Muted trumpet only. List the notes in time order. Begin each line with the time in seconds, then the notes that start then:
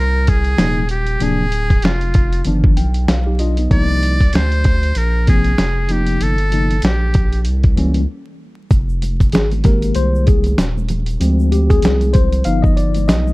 Already playing: A#4
0.29 G#4
0.91 G4
1.23 G#4
1.84 F4
3.72 D5
4.35 C5
4.98 A#4
5.30 G#4
5.92 G4
6.23 A4
6.85 G4